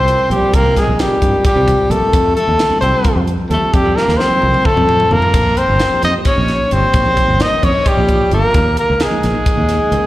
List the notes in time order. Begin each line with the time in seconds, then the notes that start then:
Already playing: C2 G3 C4 F4 A#4 C5
0.08 closed hi-hat
0.30 A#1 G3 C4 F4 G4 A#4, closed hi-hat
0.35 G3
0.42 muted fingered electric bass stroke
0.53 C2 A#3 A#4, kick, closed hi-hat
0.65 G3 C4 F4 A#4
0.76 G#4, kick, snare, closed hi-hat
0.80 G#3
0.88 A#1
0.99 G3 C4 F4 G4 A#4, snare, closed hi-hat
1.10 muted fingered electric bass stroke
1.22 G2, kick, closed hi-hat
1.45 G3 G4, muted fingered electric bass stroke, kick, closed hi-hat
1.56 C2 G3 C4 F4 C5
1.68 kick, closed hi-hat
1.90 A#1 G3 A3 C4 F4 A4 A#4, closed hi-hat
2.02 muted fingered electric bass stroke
2.13 F2, kick, closed hi-hat
2.36 A3 A4, closed hi-hat
2.48 D#2
2.59 snare, closed hi-hat
2.70 G3 C4 F4 A4, muted fingered electric bass stroke
2.81 C2 C4 C5, closed hi-hat
2.92 G3 C4 F4 C5
3.04 muted fingered electric bass stroke, kick, closed hi-hat
3.16 F2
3.27 closed hi-hat
3.49 D#2 G3 A3 C4 F4 G4 A4, closed hi-hat
3.62 muted fingered electric bass stroke
3.74 F2 G3 G4, kick, closed hi-hat
3.85 G3 C4 F4 A4
3.96 A#3 A#4, snare
4.08 D#2, snare
4.17 G3 C4 F4 A4 C5, snare
4.31 muted fingered electric bass stroke, high tom
4.42 C2, high tom
4.54 mid tom
4.65 A3 A4, muted fingered electric bass stroke, kick, mid tom
4.76 F2 G3 C4 F4 A4, mid tom
4.89 mid tom
5.00 floor tom
5.11 D#2 G3 A#3 C4 F4 A4 A#4, floor tom
5.22 muted fingered electric bass stroke, floor tom
5.34 A#1, kick, closed hi-hat, crash
5.57 C4 C5, closed hi-hat
5.68 G1
5.80 snare, closed hi-hat
5.91 F3 A#3 D#4 G4, muted fingered electric bass stroke
6.03 F2 D#4 D#5, snare, closed hi-hat
6.15 F3 A#3 D#4 G4
6.25 C#4 C#5, muted fingered electric bass stroke, kick, closed hi-hat
6.38 A#1
6.48 snare, closed hi-hat
6.71 G1 F3 A#3 C4 D#4 G4 C5, closed hi-hat
6.84 muted fingered electric bass stroke
6.94 A#1, kick, closed hi-hat
7.05 F3 A#3 D#4 G4
7.17 kick, closed hi-hat
7.28 G1
7.39 F3 A#3 D#4 A#4 D#5, snare, closed hi-hat
7.51 muted fingered electric bass stroke
7.63 F2 C#4 C#5, kick, closed hi-hat
7.86 G3 G4, muted fingered electric bass stroke, kick, closed hi-hat
7.97 A#1 F3 A#3 D#4 F4
8.09 kick, closed hi-hat
8.30 G1 F3 A#3 D#4 F4, closed hi-hat
8.34 A#4
8.54 D#2, kick, closed hi-hat
8.77 A#3 A#4, closed hi-hat
8.90 C#2
9.00 G#4, snare, closed hi-hat
9.04 G#3
9.10 F3 A#3 D#4 G#4, muted fingered electric bass stroke
9.23 A#1, snare, closed hi-hat
9.33 F3 A#3 D#4 G#4
9.46 muted fingered electric bass stroke, kick, closed hi-hat
9.57 D#2
9.69 snare, closed hi-hat
9.91 C#2 F3 A#3 D#4 A#4, closed hi-hat